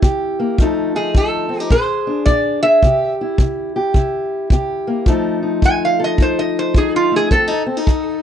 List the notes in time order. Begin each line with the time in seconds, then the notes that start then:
Already playing: E4
0.02 C3 G4, kick
0.39 A#3
0.58 F2 F3 A3 D#4, kick
0.63 A4
0.95 D#4 G#4
1.14 F2 A4, kick
1.49 C4
1.60 D#4
1.70 A#2 G#4 C5, kick
2.07 D4
2.26 A#2 D5, kick
2.63 G#4 E5
2.83 C3 G4, kick
3.21 E4
3.38 C3, kick
3.76 G4
3.94 C3 E4, kick
4.50 C3 G4, kick
4.87 A#3
5.06 F2 F3 A3 D#4 A4, kick
5.43 D#4
5.62 F2 G#5, kick
5.85 F5
6.00 A4
6.04 D#5
6.18 F2 D#4, kick
6.22 C5
6.39 D#5
6.59 C5
6.74 F2 D#4 G#4, kick
6.96 F4
7.12 A3
7.16 G#4
7.31 F2 C4 A4, kick
7.48 D#4
7.66 C4
7.77 D#4
7.87 F2, kick